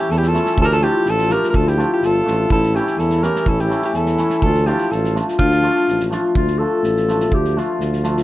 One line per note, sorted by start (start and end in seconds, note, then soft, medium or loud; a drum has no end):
0.00 0.32 E3 medium
0.00 0.12 E4 medium
0.00 0.12 G4 medium
0.10 0.39 E2 medium
0.10 0.18 E4 medium
0.10 0.19 A4 medium
0.10 snare soft
0.17 0.28 E4 medium
0.17 0.29 G4 medium
0.23 snare soft
0.27 0.59 F4 medium
0.27 0.60 A4 medium
0.33 0.63 E3 medium
0.33 0.47 A3 medium
0.33 0.47 C#4 medium
0.33 0.48 E4 medium
0.33 snare soft
0.46 snare soft
0.58 0.87 D2 loud
0.58 0.65 F4 loud
0.58 kick medium
0.62 0.74 G4 medium
0.62 0.66 A4 loud
0.62 0.74 A#4 medium
0.69 0.87 F4 medium
0.69 0.84 A4 loud
0.69 snare soft
0.81 1.28 F3 medium
0.81 0.95 A3 medium
0.81 0.96 D4 medium
0.81 0.96 F4 medium
0.81 1.11 G4 loud
0.81 snare soft
0.85 1.10 E4 medium
1.06 1.35 A1 medium
1.06 1.35 F4 loud
1.06 1.34 A4 loud
1.06 snare soft
1.18 snare soft
1.29 1.77 F3 medium
1.29 1.43 A3 medium
1.29 1.43 D4 medium
1.29 1.44 F4 medium
1.29 1.49 A#4 medium
1.29 snare soft
1.33 1.51 G4 medium
1.43 snare soft
1.50 1.58 G4 medium
1.50 1.57 A#4 medium
1.54 1.83 D2 loud
1.54 1.69 F4 medium
1.54 1.69 A4 medium
1.54 kick medium
1.67 1.90 E4 medium
1.67 1.91 G4 medium
1.67 snare soft
1.78 2.22 F3 medium
1.78 1.91 A3 medium
1.78 1.91 D4 medium
1.78 1.92 F4 medium
1.78 snare soft
1.91 2.05 E4 medium
1.91 2.07 G4 medium
2.02 2.23 G1 medium
2.02 2.50 F4 medium
2.02 2.52 A4 loud
2.02 snare soft
2.24 2.48 A1 medium
2.24 2.55 F3 soft
2.24 2.39 A3 medium
2.24 2.39 D4 medium
2.24 2.39 F4 medium
2.24 snare soft
2.50 2.79 A1 loud
2.50 2.75 E4 medium
2.50 2.77 A4 loud
2.50 kick medium
2.63 snare soft
2.74 3.21 E3 medium
2.74 2.88 A3 medium
2.74 2.88 C#4 medium
2.74 2.99 E4 medium
2.74 2.88 E4 medium
2.74 3.00 G4 medium
2.74 snare soft
2.87 snare soft
2.98 3.27 E2 medium
2.98 3.25 E4 medium
2.98 3.25 A4 medium
2.98 snare soft
3.10 snare soft
3.22 3.67 E3 medium
3.22 3.35 A3 medium
3.22 3.36 C#4 medium
3.22 3.36 E4 medium
3.22 3.49 G4 medium
3.22 3.50 A#4 medium
3.22 snare soft
3.36 snare soft
3.45 3.75 A1 medium
3.45 3.61 E4 medium
3.45 3.61 A4 medium
3.45 kick medium
3.59 3.84 E4 medium
3.59 3.83 G4 medium
3.59 snare soft
3.68 4.16 E3 medium
3.68 3.83 A3 medium
3.68 3.83 C#4 medium
3.68 3.84 E4 medium
3.68 snare soft
3.82 3.95 E4 medium
3.82 3.96 G4 medium
3.82 snare soft
3.93 4.23 E2 medium
3.93 4.43 E4 medium
3.93 4.42 A4 medium
3.93 snare soft
4.06 snare soft
4.17 4.48 E3 medium
4.17 4.32 A3 medium
4.17 4.32 C#4 medium
4.17 4.32 E4 medium
4.17 snare soft
4.30 snare soft
4.42 4.72 D2 loud
4.42 4.69 F4 medium
4.42 4.67 A4 loud
4.42 kick medium
4.54 snare soft
4.66 5.13 F3 medium
4.66 4.80 A3 medium
4.66 4.80 D4 medium
4.66 4.95 E4 medium
4.66 4.81 F4 medium
4.66 4.93 G4 medium
4.66 snare soft
4.78 snare soft
4.91 5.20 A1 loud
4.91 5.16 F4 medium
4.91 5.15 A4 medium
4.91 snare soft
5.04 snare soft
5.14 5.61 F3 medium
5.14 5.28 A3 medium
5.14 5.28 D4 medium
5.14 5.29 F4 medium
5.14 snare soft
5.28 snare soft
5.38 5.68 D2 medium
5.38 6.08 D4 loud
5.38 6.07 F4 loud
5.38 kick medium
5.51 snare soft
5.62 6.09 F3 medium
5.62 5.76 A3 medium
5.62 5.77 D4 medium
5.62 5.77 F4 medium
5.62 snare soft
5.76 snare soft
5.88 6.16 A1 medium
5.88 snare soft
6.00 snare soft
6.10 6.40 F3 medium
6.10 6.24 A3 medium
6.10 6.25 D4 medium
6.10 6.25 F4 medium
6.10 snare soft
6.35 6.64 D2 medium
6.35 6.60 F4 medium
6.35 kick medium
6.47 snare soft
6.59 7.07 F3 medium
6.59 6.73 A3 medium
6.59 6.73 D4 medium
6.59 6.73 F4 medium
6.59 7.36 A4 loud
6.83 7.33 A1 medium
6.83 snare soft
6.97 snare soft
7.08 7.56 F3 medium
7.08 7.21 A3 medium
7.08 7.22 D4 medium
7.08 7.22 F4 medium
7.08 snare soft
7.20 snare soft
7.31 7.60 D2 medium
7.31 7.60 G4 medium
7.31 kick medium
7.45 snare soft
7.57 8.02 F3 medium
7.57 7.69 A3 medium
7.57 7.70 D4 medium
7.57 7.70 F4 medium
7.57 8.23 F4 medium
7.57 snare soft
7.79 8.23 D2 medium
7.79 snare soft
7.93 snare soft
8.04 8.23 F3 medium
8.04 8.17 A3 medium
8.04 8.17 D4 soft
8.04 8.18 F4 medium
8.04 snare soft
8.17 snare soft